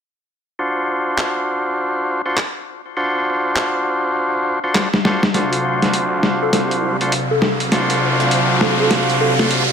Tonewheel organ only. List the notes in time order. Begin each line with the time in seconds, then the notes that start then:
0.59 D4 F4 F#4 C5
2.26 D4 F4 F#4 C5
2.97 D4 F4 F#4 C5
4.64 D4 F4 F#4 C5
5.05 D4 F4 F#4 C5
5.34 D4 F4 F#4 C5
7.01 D4 F4 F#4 C5
7.72 D4 F4 F#4 C5
9.39 D4 F4 F#4 C5